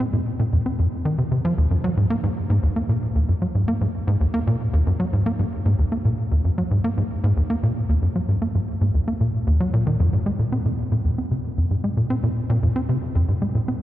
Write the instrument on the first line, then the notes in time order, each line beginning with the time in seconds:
analog synth bass
0.13 A#2
0.39 A#2
0.53 F2
0.66 C4
0.79 F2
1.05 D#3
1.18 C3
1.32 C3
1.45 F3
1.58 D#2
1.71 F#2
1.84 F#3
1.97 G#2
2.10 A#3
2.23 G#2
2.50 G#2
2.63 D#2
2.76 A#3
2.89 A#2
3.15 D#2
3.29 F#2
3.42 F#3
3.55 G#2
3.68 A#3
3.81 G#2
4.08 G#2
4.21 D#2
4.34 A#3
4.47 A#2
4.73 D#2
4.87 F#2
5.00 F#3
5.13 G#2
5.26 A#3
5.39 G#2
5.66 G#2
5.79 D#2
5.92 A#3
6.05 A#2
6.31 D#2
6.45 F#2
6.58 F#3
6.71 G#2
6.84 A#3
6.97 G#2
7.24 G#2
7.37 D#2
7.50 A#3
7.63 A#2
7.89 D#2
8.02 F#2
8.16 F#3
8.29 G#2
8.42 A#3
8.55 G#2
8.81 G#2
8.95 D#2
9.08 A#3
9.21 A#2
9.47 D#2
9.60 F#3
9.74 A#2
9.87 D#3
10.00 F2
10.13 G#2
10.26 G#3
10.39 A#2
10.52 C4
10.66 A#2
10.92 A#2
11.05 F2
11.18 C4
11.31 C3
11.58 F2
11.71 G#2
11.84 G#3
11.97 A#2
12.10 C4
12.23 A#2
12.50 A#2
12.63 F2
12.76 C4
12.89 C3
13.15 F2
13.29 G#2
13.42 G#3
13.55 A#2
13.68 C4